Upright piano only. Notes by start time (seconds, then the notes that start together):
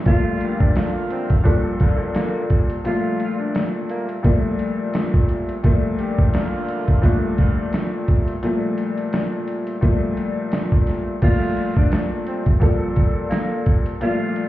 0.05 A#2 F3 G3 A3
1.43 A#2 F3 G3 A4
2.84 A#2 F3 G3 A3
4.23 A#2 F3 G3 A3
5.63 A#2 F3 G3 A3
7.01 A#2 F3 G3 A3
8.42 A#2 F3 G3 A3
9.81 A#2 F3 G3 A3
11.22 A#2 F3 G3 A3
12.60 A#2 F3 G3 A4
14.01 A#2 F3 G3 A3